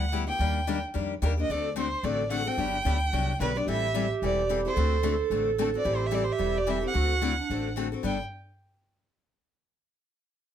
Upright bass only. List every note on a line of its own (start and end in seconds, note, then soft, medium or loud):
0.00 0.29 D2 medium
0.39 0.83 D#2 medium
0.95 1.18 F2 medium
1.22 1.45 D#2 medium
1.49 1.93 D2 medium
2.03 2.47 A1 medium
2.57 2.79 G1 medium
2.85 3.08 D2 medium
3.13 3.36 C2 medium
3.40 3.63 B1 medium
3.67 4.11 A1 medium
4.22 4.65 E1 medium
4.76 5.20 D2 medium
5.30 5.74 A1 medium
5.85 6.29 A1 medium
6.39 6.83 E1 medium
6.95 7.38 D2 medium
7.50 7.93 A1 medium
8.03 8.18 G1 medium